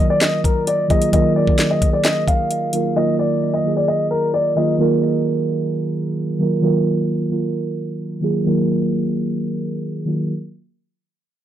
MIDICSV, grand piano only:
0, 0, Header, 1, 2, 480
1, 0, Start_track
1, 0, Key_signature, -6, "minor"
1, 0, Tempo, 458015
1, 1185, Time_signature, 4, 2, 24, 8
1, 11996, End_track
2, 0, Start_track
2, 0, Title_t, "Grand piano"
2, 0, Program_c, 0, 0
2, 105, Note_on_c, 0, 74, 82
2, 195, Note_off_c, 0, 74, 0
2, 224, Note_on_c, 0, 75, 83
2, 405, Note_off_c, 0, 75, 0
2, 465, Note_on_c, 0, 70, 68
2, 645, Note_off_c, 0, 70, 0
2, 706, Note_on_c, 0, 74, 81
2, 886, Note_off_c, 0, 74, 0
2, 946, Note_on_c, 0, 75, 81
2, 1126, Note_off_c, 0, 75, 0
2, 1185, Note_on_c, 0, 75, 87
2, 1366, Note_off_c, 0, 75, 0
2, 1424, Note_on_c, 0, 74, 78
2, 1763, Note_off_c, 0, 74, 0
2, 1786, Note_on_c, 0, 75, 79
2, 1966, Note_off_c, 0, 75, 0
2, 2025, Note_on_c, 0, 74, 71
2, 2115, Note_off_c, 0, 74, 0
2, 2146, Note_on_c, 0, 75, 93
2, 2326, Note_off_c, 0, 75, 0
2, 2384, Note_on_c, 0, 77, 83
2, 3063, Note_off_c, 0, 77, 0
2, 3106, Note_on_c, 0, 75, 83
2, 3286, Note_off_c, 0, 75, 0
2, 3344, Note_on_c, 0, 74, 76
2, 3683, Note_off_c, 0, 74, 0
2, 3705, Note_on_c, 0, 75, 77
2, 3885, Note_off_c, 0, 75, 0
2, 3946, Note_on_c, 0, 74, 68
2, 4036, Note_off_c, 0, 74, 0
2, 4066, Note_on_c, 0, 75, 84
2, 4246, Note_off_c, 0, 75, 0
2, 4304, Note_on_c, 0, 70, 74
2, 4485, Note_off_c, 0, 70, 0
2, 4546, Note_on_c, 0, 74, 79
2, 4726, Note_off_c, 0, 74, 0
2, 4785, Note_on_c, 0, 75, 75
2, 4965, Note_off_c, 0, 75, 0
2, 11996, End_track
0, 0, End_of_file